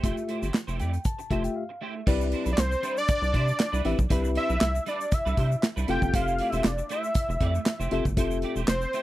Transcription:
0.03 analog synth bass F1, clean electric guitar A3 E4 G4 C5, tine electric piano A3 F4 G4 E5, kick, closed hi-hat, shaker
0.16 muted clean electric guitar stroke, closed hi-hat, shaker
0.28 clean electric guitar A3 E4 G4 C5, closed hi-hat
0.42 analog synth bass G1, clean electric guitar A3 E4 G4 C5, closed hi-hat, shaker
0.54 muted clean electric guitar stroke, snare, clap, shaker
0.67 analog synth bass F1, clean electric guitar A3 E4 G4 C5, closed hi-hat, shaker
0.79 analog synth bass F2, clean electric guitar A3 E4 G4 D5, tine electric piano G5, closed hi-hat, shaker
0.93 muted clean electric guitar stroke, closed hi-hat, shaker
1.05 tine electric piano A5, kick, closed hi-hat, shaker
1.18 muted clean electric guitar stroke, closed hi-hat, shaker
1.30 analog synth bass F1, clean electric guitar A3 E4 G4 C5, tine electric piano A3 F4 G4 E5, kick, closed hi-hat
1.44 tine electric piano G5, muted clean electric guitar stroke, closed hi-hat, shaker
1.56 tine electric piano F5
1.69 muted clean electric guitar stroke
1.81 clean electric guitar A3 E4 G4 C5, tine electric piano E5
1.95 muted clean electric guitar stroke
2.06 analog synth bass C2, clean electric guitar G3 D4 E4 B4, tine electric piano C4 E4 G4 B4 D5, kick, crash, shaker
2.21 shaker
2.32 clean electric guitar G3 D4 E4 C5, closed hi-hat
2.45 analog synth bass B1, clean electric guitar G3 D4 E4 B4, closed hi-hat, shaker
2.53 analog synth lead D5
2.58 analog synth bass C2, analog synth lead C5, snare, clap, closed hi-hat, shaker
2.71 muted clean electric guitar stroke, shaker
2.83 clean electric guitar G3 D4 E4 B4, closed hi-hat, shaker
2.96 analog synth lead D5, muted clean electric guitar stroke, shaker
3.08 kick, closed hi-hat, shaker
3.22 analog synth bass C2, muted clean electric guitar stroke, shaker
3.33 analog synth bass C3, clean electric guitar G3 D4 E4 C5, kick, closed hi-hat
3.47 muted clean electric guitar stroke, shaker
3.59 muted clean electric guitar stroke, snare, clap, closed hi-hat, shaker
3.72 analog synth bass C2, clean electric guitar G3 D4 E4 B4, shaker
3.84 analog synth bass A1, clean electric guitar G3 D4 E4 B4, tine electric piano C4 E4 G4 B4 E5, closed hi-hat
3.98 analog synth bass B1, muted clean electric guitar stroke, kick, shaker
4.09 analog synth bass C2, clean electric guitar G3 D4 E4 B4, tine electric piano C4 E4 G4 B4 E5, kick, closed hi-hat, shaker
4.24 shaker
4.35 clean electric guitar G3 D4 E4 C5, analog synth lead E5, closed hi-hat
4.49 analog synth bass B1, clean electric guitar G3 D4 E4 B4, shaker
4.61 analog synth bass C2, snare, clap, closed hi-hat, shaker
4.74 muted clean electric guitar stroke, shaker
4.86 clean electric guitar G3 D4 E4 B4, analog synth lead D5, closed hi-hat, shaker
5.00 muted clean electric guitar stroke, shaker
5.12 analog synth lead E5, muted clean electric guitar stroke, kick, closed hi-hat, shaker
5.25 analog synth bass C2, clean electric guitar G3 D4 E4 B4, shaker
5.37 analog synth bass C3, clean electric guitar G3 D4 E4 C5, kick, closed hi-hat
5.51 muted clean electric guitar stroke, shaker
5.63 muted clean electric guitar stroke, snare, clap, closed hi-hat, shaker
5.76 analog synth bass C2, clean electric guitar G3 D4 E4 B4, shaker
5.88 analog synth bass F1, clean electric guitar A3 E4 G4 C5, tine electric piano C4 F4 G4 A4 F5, analog synth lead G5, closed hi-hat
6.02 analog synth bass G1, muted clean electric guitar stroke, kick, shaker
6.14 analog synth bass F1, clean electric guitar A3 E4 G4 C5, analog synth lead F5, kick, closed hi-hat, shaker
6.28 shaker
6.38 clean electric guitar A3 E4 G4 D5, closed hi-hat
6.49 analog synth bass E1, clean electric guitar G4 C5, analog synth lead E5, closed hi-hat, shaker
6.54 clean electric guitar A3 E4
6.64 analog synth bass F1, analog synth lead D5, snare, clap, closed hi-hat, shaker
6.78 muted clean electric guitar stroke, shaker
6.89 clean electric guitar A3 E4 G4 C5, analog synth lead E5, closed hi-hat, shaker
7.04 muted clean electric guitar stroke, shaker
7.15 kick, closed hi-hat, shaker
7.29 analog synth bass F1, muted clean electric guitar stroke, shaker
7.40 analog synth bass F2, clean electric guitar A3 E4 G4 D5, kick, closed hi-hat
7.55 muted clean electric guitar stroke, shaker
7.66 muted clean electric guitar stroke, snare, clap, closed hi-hat, shaker
7.80 analog synth bass F1, clean electric guitar A3 E4 G4 C5, shaker
7.91 analog synth bass F1, clean electric guitar A3 E4 G4 C5, tine electric piano C4 F4 G4 A4 E5, closed hi-hat
8.05 analog synth bass G1, muted clean electric guitar stroke, kick, shaker
8.17 analog synth bass F1, clean electric guitar A3 E4 G4 C5, tine electric piano C4 F4 G4 A4 E5, kick, closed hi-hat, shaker
8.31 shaker
8.42 clean electric guitar A3 E4 G4 D5, closed hi-hat
8.56 analog synth bass E1, clean electric guitar A3 E4 G4 C5, shaker
8.68 analog synth bass F1, analog synth lead C5, snare, clap, closed hi-hat, shaker
8.81 muted clean electric guitar stroke, shaker
8.93 clean electric guitar A3 E4 G4 C5, closed hi-hat, shaker

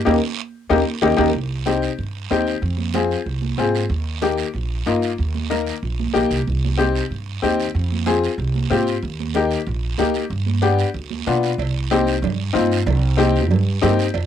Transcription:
0.05 upright bass D#2, upright piano A#3 D#4 G4, high conga, high timbale, long guiro
0.70 upright bass D#2, upright piano A#3 D#4 G4, high conga, high timbale, long guiro
1.02 upright bass D#2, upright piano A#3 D#4 G4, high conga, high timbale, long guiro
1.17 upright bass D#2, upright piano A#3 D#4 G4, high conga, high timbale, long guiro
1.34 upright bass C2, high conga, long guiro
1.66 upright piano C4 D#4 G4, high conga, short guiro
1.82 short guiro
1.98 upright bass G2, high conga, long guiro
2.30 upright bass D#2, upright piano C4 D#4 G4, high conga, short guiro
2.47 short guiro
2.62 upright bass F2, high conga, long guiro
2.78 high conga
2.94 upright piano C4 F4 G#4, high conga, short guiro
3.11 short guiro
3.26 upright bass C2, high conga, long guiro
3.42 high conga
3.57 upright bass G#2, upright piano C4 F4 G#4, high conga, short guiro
3.75 short guiro
3.89 upright bass D#2, high conga, long guiro
4.22 upright piano A#3 D#4 G4, high conga, short guiro
4.38 short guiro
4.54 upright bass A#1, high conga, long guiro
4.86 upright bass G2, upright piano A#3 D#4 F4, high conga, short guiro
5.02 short guiro
5.18 upright bass D#2, high conga, long guiro
5.35 high conga
5.50 upright piano A#3 D#4 A#4, high conga, short guiro
5.67 short guiro
5.83 upright bass A#1, high conga, long guiro
5.99 high conga
6.13 upright bass A#1, upright piano A#3 D#4 G4, high conga, short guiro
6.30 upright bass C2, short guiro
6.47 upright bass C2, high conga, long guiro
6.65 high conga
6.77 upright piano C4 D#4 G4, high conga, short guiro
6.96 short guiro
7.10 upright bass G2, high conga, long guiro
7.42 upright bass D#2, upright piano C4 D#4 G4, high conga, short guiro
7.60 short guiro
7.75 upright bass F2, high conga, long guiro
7.92 high conga
8.06 upright piano C4 F4 G#4, high conga, short guiro
8.24 short guiro
8.38 upright bass C2, high conga, long guiro
8.55 high conga
8.70 upright bass G#2, upright piano C4 F4 G4, high conga, short guiro
8.87 short guiro
9.02 upright bass D#2, high conga, long guiro
9.20 high conga
9.34 upright piano A#3 D#4 G4, high conga, short guiro
9.51 short guiro
9.67 upright bass A#1, high conga, long guiro
9.98 upright bass D2, upright piano A#3 D#4 G4, high conga, short guiro
10.14 short guiro
10.30 upright bass G2, high conga, long guiro
10.46 high conga
10.62 upright piano B3 D4 G4, high conga, short guiro
10.79 short guiro
10.94 upright bass D2, high conga, long guiro
11.11 high conga
11.26 upright bass B2, upright piano B3 D4 F4, high conga, short guiro
11.43 short guiro
11.58 upright bass C2, cowbell, high conga, long guiro
11.91 upright piano C4 D#4 G4, cowbell, high conga, short guiro
12.07 short guiro
12.22 upright bass G2, cowbell, high conga, low conga, long guiro
12.53 upright bass G2, upright piano C4 D#4 F4, cowbell, high conga, short guiro
12.72 short guiro
12.86 upright bass C2, cowbell, high conga, low conga, long guiro
13.17 upright piano C4 D#4 G4, cowbell, high conga, short guiro
13.36 short guiro
13.50 upright bass G2, cowbell, high conga, low conga, long guiro
13.82 upright bass G2, upright piano C4 D#4 G4, cowbell, high conga, low conga, low timbale, short guiro
13.99 short guiro
14.14 upright bass F2, cowbell, high conga, long guiro

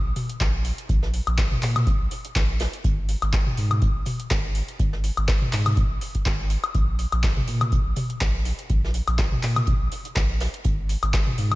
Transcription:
0.05 sub bass A#1
0.16 closed hi-hat, open hi-hat, mid tom
0.30 closed hi-hat
0.40 sub bass A#1, kick, snare, clap, closed hi-hat
0.64 closed hi-hat, open hi-hat
0.78 closed hi-hat
0.89 sub bass A#1, kick, closed hi-hat
1.03 snare
1.14 closed hi-hat, open hi-hat
1.27 sub bass A#1, closed hi-hat, high woodblock
1.37 kick, snare, clap, closed hi-hat
1.51 mid tom
1.62 sub bass A#2, clap, open hi-hat
1.76 closed hi-hat, mid tom, high woodblock
1.87 kick, closed hi-hat
2.00 sub bass A#1
2.11 closed hi-hat, open hi-hat
2.25 closed hi-hat
2.35 sub bass A#1, kick, snare, clap, closed hi-hat
2.60 snare, closed hi-hat, open hi-hat
2.73 closed hi-hat
2.84 sub bass G#1, kick, closed hi-hat
3.09 closed hi-hat, open hi-hat
3.22 sub bass G#1, closed hi-hat, high woodblock
3.33 kick, snare, clap, closed hi-hat
3.46 mid tom
3.57 sub bass G#2, closed hi-hat, open hi-hat
3.71 closed hi-hat, mid tom, high woodblock
3.82 kick, closed hi-hat
3.95 sub bass G#1
4.06 closed hi-hat, open hi-hat, mid tom
4.20 closed hi-hat
4.30 sub bass G#1, kick, snare, clap, closed hi-hat
4.55 closed hi-hat, open hi-hat
4.68 closed hi-hat
4.79 sub bass G#1, kick, closed hi-hat
4.93 snare
5.04 closed hi-hat, open hi-hat
5.17 sub bass G#1, closed hi-hat, high woodblock
5.28 kick, snare, clap, closed hi-hat
5.42 mid tom
5.52 sub bass G#2, clap, open hi-hat
5.66 closed hi-hat, mid tom, high woodblock
5.77 kick, closed hi-hat
5.90 sub bass G#1
6.01 closed hi-hat, open hi-hat
6.15 kick, closed hi-hat
6.25 sub bass G#1, kick, snare, clap, closed hi-hat
6.50 closed hi-hat, open hi-hat
6.64 closed hi-hat, high woodblock
6.75 sub bass A#1, kick, closed hi-hat
6.99 closed hi-hat, open hi-hat
7.12 sub bass A#1, closed hi-hat, high woodblock
7.23 kick, snare, clap, closed hi-hat
7.37 mid tom
7.47 sub bass A#2, closed hi-hat, open hi-hat
7.61 closed hi-hat, mid tom, high woodblock
7.72 kick, closed hi-hat
7.86 sub bass A#1
7.96 closed hi-hat, open hi-hat, mid tom
8.10 closed hi-hat
8.21 sub bass A#1, kick, snare, clap, closed hi-hat
8.45 closed hi-hat, open hi-hat
8.59 closed hi-hat
8.70 sub bass A#1, kick, closed hi-hat
8.84 snare
8.94 closed hi-hat, open hi-hat
9.08 sub bass A#1, closed hi-hat, high woodblock
9.18 kick, snare, clap, closed hi-hat
9.32 mid tom
9.43 sub bass A#2, clap, open hi-hat
9.56 closed hi-hat, mid tom, high woodblock
9.67 kick, closed hi-hat
9.81 sub bass A#1
9.92 closed hi-hat, open hi-hat
10.05 closed hi-hat
10.15 sub bass A#1, kick, snare, clap, closed hi-hat
10.40 snare, closed hi-hat, open hi-hat
10.54 closed hi-hat
10.64 sub bass G#1, kick, closed hi-hat
10.89 closed hi-hat, open hi-hat
11.03 sub bass G#1, closed hi-hat, high woodblock
11.13 kick, snare, clap, closed hi-hat
11.27 mid tom
11.38 sub bass G#2, closed hi-hat, open hi-hat
11.52 closed hi-hat, mid tom, high woodblock

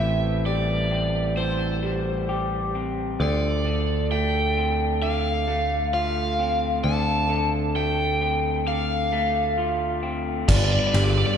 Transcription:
Already playing: picked electric bass A1, clean electric guitar A2, pedal steel guitar E3 A3 C4 G4 C5, overdriven electric guitar E5
0.00 clean electric guitar E3
0.46 clean electric guitar G3, overdriven electric guitar D5
0.91 clean electric guitar C4
1.37 clean electric guitar E3, pedal steel guitar A4, overdriven electric guitar C5
1.83 clean electric guitar G3
2.29 clean electric guitar G4
2.75 clean electric guitar C4
3.20 picked electric bass D2, clean electric guitar D3, pedal steel guitar D3 F4, overdriven electric guitar D5
3.66 clean electric guitar D3
4.11 clean electric guitar A3, overdriven electric guitar G5
4.57 clean electric guitar C4
5.02 clean electric guitar D3, overdriven electric guitar F5
5.48 clean electric guitar A3
5.94 clean electric guitar F4, overdriven electric guitar F5
6.39 clean electric guitar C4
6.84 picked electric bass D2, clean electric guitar D3, overdriven electric guitar A5
7.29 clean electric guitar D3
7.75 clean electric guitar A3, overdriven electric guitar G5
8.21 clean electric guitar C4
8.66 clean electric guitar D3, overdriven electric guitar F5
9.12 clean electric guitar A3
9.58 clean electric guitar F4
10.03 clean electric guitar C4
10.48 picked electric bass G1, clean electric guitar G2, pedal steel guitar D3 G3 B3 F4 B4, overdriven electric guitar D5, kick, snare, crash
10.56 overdriven electric guitar D5
10.64 overdriven electric guitar D5
10.72 overdriven electric guitar D5
10.79 overdriven electric guitar D5
10.87 overdriven electric guitar D5
10.94 picked electric bass G1, clean electric guitar G3, overdriven electric guitar D5, ride
11.04 overdriven electric guitar D5
11.11 overdriven electric guitar D5
11.18 overdriven electric guitar D5
11.26 overdriven electric guitar D5
11.34 overdriven electric guitar D5

